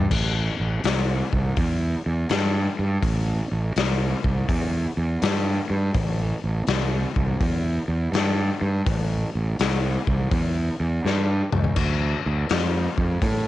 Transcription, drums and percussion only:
0.11 kick loud
0.11 crash loud
0.84 snare loud
0.84 open hi-hat medium
1.33 kick medium
1.56 kick loud
1.56 open hi-hat medium
2.29 snare loud
2.29 open hi-hat soft
3.03 kick loud
3.03 open hi-hat medium
3.76 snare loud
3.76 open hi-hat medium
4.24 kick medium
4.49 kick loud
4.49 open hi-hat medium
5.22 snare loud
5.22 open hi-hat medium
5.94 kick loud
5.94 open hi-hat medium
6.67 snare loud
6.67 open hi-hat medium
7.16 kick medium
7.41 kick medium
7.41 open hi-hat medium
8.13 snare loud
8.13 open hi-hat medium
8.86 kick loud
8.86 open hi-hat medium
9.59 snare loud
9.59 open hi-hat medium
10.07 kick medium
10.31 kick loud
10.31 open hi-hat medium
11.06 snare medium
11.53 mid tom medium
11.64 floor tom medium
11.76 kick loud
11.76 splash medium
11.76 crash medium
12.49 snare loud
12.49 open hi-hat medium
12.98 kick medium
13.22 kick loud
13.22 open hi-hat medium

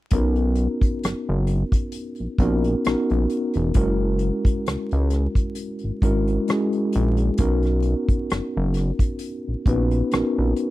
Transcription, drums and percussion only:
0.11 kick medium
0.11 closed hi-hat medium
0.36 closed hi-hat soft
0.55 closed hi-hat medium
0.81 kick medium
0.81 closed hi-hat soft
1.03 cross-stick medium
1.03 closed hi-hat medium
1.47 closed hi-hat soft
1.72 kick medium
1.72 closed hi-hat soft
1.92 closed hi-hat medium
2.15 closed hi-hat soft
2.38 kick medium
2.38 closed hi-hat soft
2.64 closed hi-hat soft
2.85 cross-stick loud
2.85 closed hi-hat medium
3.10 closed hi-hat soft
3.30 closed hi-hat medium
3.54 closed hi-hat soft
3.74 kick medium
3.74 closed hi-hat medium
4.19 closed hi-hat soft
4.45 kick medium
4.45 closed hi-hat soft
4.66 cross-stick medium
4.66 closed hi-hat medium
4.91 closed hi-hat soft
5.10 cross-stick soft
5.10 closed hi-hat soft
5.35 kick medium
5.35 closed hi-hat soft
5.55 closed hi-hat medium
5.79 closed hi-hat soft
6.02 kick medium
6.02 closed hi-hat soft
6.28 closed hi-hat soft
6.48 cross-stick medium
6.48 closed hi-hat medium
6.73 closed hi-hat soft
6.93 closed hi-hat medium
7.17 closed hi-hat soft
7.38 kick medium
7.38 closed hi-hat medium
7.63 cross-stick soft
7.63 closed hi-hat soft
7.82 closed hi-hat soft
8.09 kick medium
8.09 closed hi-hat soft
8.30 cross-stick medium
8.30 closed hi-hat medium
8.74 cross-stick soft
8.74 closed hi-hat medium
8.99 kick medium
8.99 closed hi-hat soft
9.19 closed hi-hat medium
9.66 kick medium
9.66 closed hi-hat soft
9.91 closed hi-hat soft
10.12 cross-stick medium
10.12 closed hi-hat medium
10.56 closed hi-hat medium

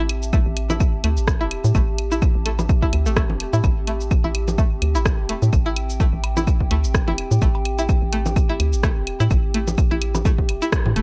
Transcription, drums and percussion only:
0.09 closed hi-hat medium
0.09 claves medium
0.23 shaker medium
0.33 kick loud
0.33 claves medium
0.33 shaker soft
0.57 closed hi-hat loud
0.57 claves soft
0.70 low conga medium
0.70 shaker medium
0.80 kick loud
0.80 claves medium
0.80 shaker soft
1.04 closed hi-hat loud
1.04 claves medium
1.17 shaker medium
1.28 kick loud
1.28 cross-stick loud
1.28 cowbell medium
1.28 claves soft
1.28 shaker soft
1.51 closed hi-hat medium
1.51 claves medium
1.64 shaker medium
1.75 kick loud
1.75 claves medium
1.75 shaker soft
1.98 closed hi-hat medium
1.98 claves soft
2.12 shaker medium
2.22 kick loud
2.22 claves medium
2.22 shaker soft
2.46 closed hi-hat medium
2.46 claves medium
2.59 cowbell medium
2.59 low conga medium
2.59 shaker soft
2.69 kick loud
2.69 claves soft
2.69 shaker soft
2.82 kick medium
2.93 closed hi-hat loud
2.93 claves medium
3.06 shaker medium
3.17 kick loud
3.17 cross-stick loud
3.17 claves medium
3.17 shaker soft
3.30 low conga medium
3.40 closed hi-hat loud
3.40 claves soft
3.53 shaker soft
3.64 kick loud
3.64 cowbell medium
3.64 claves medium
3.64 shaker soft
3.87 closed hi-hat medium
3.87 claves soft
4.01 shaker medium
4.11 kick loud
4.11 claves medium
4.11 shaker soft
4.35 closed hi-hat medium
4.35 claves medium
4.48 low conga medium
4.48 shaker medium
4.58 kick loud
4.58 claves soft
4.58 shaker soft
4.82 closed hi-hat medium
4.82 claves medium
4.95 cowbell medium
4.95 shaker medium
5.05 kick loud
5.05 cross-stick loud
5.05 claves medium
5.05 shaker soft
5.29 closed hi-hat medium
5.29 claves soft
5.42 shaker soft
5.53 kick loud
5.53 claves medium
5.53 shaker soft
5.76 closed hi-hat medium
5.76 claves medium
5.90 shaker medium
6.00 kick loud
6.00 claves soft
6.00 shaker soft
6.24 closed hi-hat medium
6.24 cowbell medium
6.24 claves medium
6.37 low conga medium
6.37 shaker medium
6.47 kick loud
6.47 claves medium
6.47 shaker soft
6.60 kick medium
6.71 closed hi-hat medium
6.71 claves soft
6.84 shaker medium
6.94 kick loud
6.94 cross-stick loud
6.94 claves medium
6.94 shaker soft
7.08 low conga medium
7.18 closed hi-hat medium
7.18 claves medium
7.31 shaker medium
7.42 kick loud
7.42 claves soft
7.42 shaker soft
7.55 cowbell medium
7.65 closed hi-hat medium
7.65 claves medium
7.79 shaker medium
7.89 kick loud
7.89 claves medium
7.89 shaker soft
8.13 closed hi-hat medium
8.13 claves soft
8.26 low conga medium
8.26 shaker medium
8.36 kick loud
8.36 claves medium
8.36 shaker soft
8.60 closed hi-hat medium
8.60 claves medium
8.73 shaker medium
8.83 kick loud
8.83 cross-stick loud
8.83 cowbell medium
8.83 claves soft
8.83 shaker soft
9.07 closed hi-hat medium
9.07 claves medium
9.20 shaker medium
9.31 kick loud
9.31 claves medium
9.31 shaker soft
9.54 closed hi-hat medium
9.54 claves soft
9.67 low conga medium
9.67 shaker medium
9.78 kick loud
9.78 claves medium
9.78 shaker soft
10.01 closed hi-hat medium
10.01 claves medium
10.15 cowbell medium
10.15 low conga medium
10.15 shaker medium
10.25 kick loud
10.25 claves soft
10.25 shaker soft
10.38 kick medium
10.49 closed hi-hat medium
10.49 claves medium
10.62 shaker medium
10.72 kick loud
10.72 cross-stick loud
10.72 claves medium
10.72 shaker soft
10.86 low conga loud
10.96 closed hi-hat medium
10.96 claves soft

